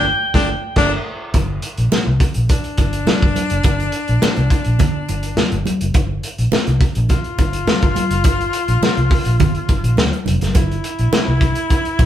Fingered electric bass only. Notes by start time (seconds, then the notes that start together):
0.34 G1
0.76 G1
1.34 G1
1.78 A#1
2.07 C2
2.36 A#1
2.78 G1
3.08 muted fingered electric bass stroke
3.22 G1
3.51 F#1
3.64 G1
4.09 A#1
4.37 C2
4.66 A#1
5.09 G1
5.37 muted fingered electric bass stroke
5.52 G1
5.82 F#1
5.95 G1
6.39 A#1
6.52 muted fingered electric bass stroke
6.67 C2
6.97 A#1
7.38 G1
7.68 muted fingered electric bass stroke
7.82 G1
8.11 F#1
8.24 G1
8.68 A#1
8.97 C2
9.26 A#1
9.40 G1
9.69 G1
9.84 A#1
9.97 D2
10.27 F1
10.42 F#1
10.55 G1
10.99 A#1
11.28 C2
11.99 A#1